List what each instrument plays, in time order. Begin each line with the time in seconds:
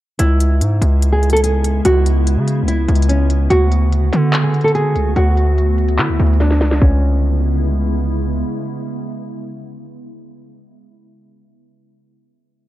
0.19 808-style bass C#2, ambient pad C#3 G#3 B3 E4, nylon-string guitar E4, closed hi-hat
0.40 closed hi-hat
0.61 808-style bass G#2, closed hi-hat
0.82 808-style bass C#2, closed hi-hat
1.02 closed hi-hat
1.12 nylon-string guitar G#4
1.23 closed hi-hat
1.30 nylon-string guitar A4, closed hi-hat
1.37 closed hi-hat
1.44 nylon-string guitar G#4, closed hi-hat
1.64 closed hi-hat
1.85 808-style bass C#2, nylon-string guitar F#4, closed hi-hat
2.06 closed hi-hat
2.27 closed hi-hat
2.37 808-style bass C#3
2.48 closed hi-hat
2.63 808-style bass C#2
2.68 nylon-string guitar E4, closed hi-hat
2.88 808-style bass C#2, closed hi-hat
2.95 closed hi-hat
3.02 closed hi-hat
3.09 nylon-string guitar C#4, closed hi-hat
3.30 closed hi-hat
3.50 808-style bass D2, ambient pad D3 A3 F#4, nylon-string guitar F#4, closed hi-hat
3.72 closed hi-hat
3.92 closed hi-hat
4.13 808-style bass D3, closed hi-hat
4.33 clap, closed hi-hat
4.44 nylon-string guitar G#4
4.54 closed hi-hat
4.61 nylon-string guitar A4, closed hi-hat
4.68 closed hi-hat
4.75 nylon-string guitar G#4, closed hi-hat
4.95 808-style bass C#2, closed hi-hat
5.16 808-style bass D2, nylon-string guitar F#4, closed hi-hat
5.37 closed hi-hat
5.58 closed hi-hat
5.78 closed hi-hat
5.88 closed hi-hat
5.99 808-style bass D3, nylon-string guitar E4, clap, closed hi-hat
6.09 808-style bass D2
6.19 808-style bass D2, closed hi-hat
6.27 closed hi-hat
6.33 closed hi-hat
6.40 nylon-string guitar D4, snare, closed hi-hat
6.51 snare
6.61 808-style bass C#2, snare, closed hi-hat
6.71 snare
6.82 808-style bass C#2, ambient pad C#3 G#3 B3 E4, nylon-string guitar C#4, kick